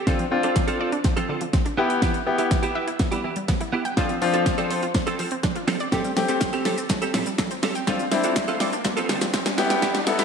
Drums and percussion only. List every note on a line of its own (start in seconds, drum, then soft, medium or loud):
0.07 kick loud
0.07 snare medium
0.07 closed hi-hat medium
0.19 closed hi-hat soft
0.43 closed hi-hat medium
0.56 kick loud
0.56 snare medium
0.56 closed hi-hat medium
0.68 closed hi-hat medium
0.92 closed hi-hat soft
1.04 kick loud
1.04 snare medium
1.04 closed hi-hat medium
1.17 closed hi-hat medium
1.41 closed hi-hat medium
1.53 kick loud
1.53 snare medium
1.53 closed hi-hat medium
1.66 closed hi-hat soft
1.90 closed hi-hat soft
2.02 kick loud
2.02 snare medium
2.02 closed hi-hat medium
2.14 closed hi-hat soft
2.38 closed hi-hat medium
2.51 kick loud
2.51 snare medium
2.51 closed hi-hat medium
2.63 closed hi-hat medium
2.88 closed hi-hat soft
2.99 kick loud
2.99 snare medium
2.99 closed hi-hat medium
3.12 closed hi-hat medium
3.36 closed hi-hat medium
3.48 kick loud
3.48 snare medium
3.48 closed hi-hat medium
3.61 closed hi-hat medium
3.85 closed hi-hat soft
3.97 kick loud
3.97 snare medium
3.97 closed hi-hat medium
4.09 closed hi-hat soft
4.22 open hi-hat medium
4.34 closed hi-hat medium
4.46 kick loud
4.46 snare medium
4.46 closed hi-hat medium
4.58 closed hi-hat medium
4.71 open hi-hat medium
4.83 closed hi-hat soft
4.94 kick loud
4.94 snare medium
4.94 closed hi-hat medium
5.07 closed hi-hat medium
5.19 open hi-hat medium
5.31 closed hi-hat medium
5.43 kick loud
5.43 snare medium
5.43 closed hi-hat medium
5.56 closed hi-hat medium
5.68 snare medium
5.68 open hi-hat medium
5.80 closed hi-hat soft
5.92 kick loud
5.92 snare medium
5.92 closed hi-hat medium
5.92 shaker medium
6.04 closed hi-hat soft
6.04 shaker soft
6.17 snare medium
6.17 open hi-hat medium
6.17 shaker soft
6.29 closed hi-hat medium
6.29 shaker medium
6.41 kick loud
6.41 snare medium
6.41 clap medium
6.41 closed hi-hat medium
6.41 shaker medium
6.53 closed hi-hat medium
6.53 shaker medium
6.65 snare medium
6.65 open hi-hat medium
6.65 shaker medium
6.78 closed hi-hat soft
6.78 shaker medium
6.89 kick loud
6.89 snare medium
6.89 clap medium
6.89 closed hi-hat medium
6.89 shaker medium
7.02 closed hi-hat medium
7.02 shaker medium
7.14 snare medium
7.14 open hi-hat medium
7.14 shaker medium
7.26 closed hi-hat medium
7.26 shaker medium
7.38 kick loud
7.38 snare medium
7.38 clap medium
7.38 closed hi-hat medium
7.38 shaker medium
7.51 closed hi-hat medium
7.51 shaker medium
7.63 snare medium
7.63 open hi-hat medium
7.63 shaker soft
7.75 closed hi-hat soft
7.75 shaker medium
7.87 kick loud
7.87 snare medium
7.87 closed hi-hat medium
7.87 shaker medium
7.99 closed hi-hat soft
7.99 shaker soft
8.12 snare loud
8.12 open hi-hat medium
8.12 shaker soft
8.24 closed hi-hat medium
8.24 shaker medium
8.36 kick loud
8.36 snare loud
8.36 clap medium
8.36 closed hi-hat medium
8.36 shaker medium
8.48 closed hi-hat medium
8.48 shaker medium
8.60 snare loud
8.60 open hi-hat medium
8.60 shaker medium
8.73 closed hi-hat soft
8.73 shaker medium
8.84 kick loud
8.84 snare loud
8.84 clap medium
8.84 closed hi-hat medium
8.84 shaker medium
8.97 closed hi-hat medium
8.97 shaker medium
9.09 snare loud
9.09 open hi-hat medium
9.09 shaker medium
9.21 snare loud
9.21 closed hi-hat medium
9.21 shaker medium
9.34 kick loud
9.34 snare loud
9.34 clap medium
9.34 closed hi-hat medium
9.34 shaker medium
9.46 snare loud
9.46 closed hi-hat medium
9.46 shaker medium
9.58 snare loud
9.58 open hi-hat medium
9.58 shaker soft
9.70 snare loud
9.70 closed hi-hat soft
9.70 shaker medium
9.82 kick loud
9.82 snare loud
9.82 closed hi-hat medium
9.82 shaker medium
9.94 snare loud
9.94 closed hi-hat soft
9.94 shaker soft
10.07 snare loud
10.07 open hi-hat medium
10.07 shaker medium
10.19 snare loud
10.19 closed hi-hat medium
10.19 shaker medium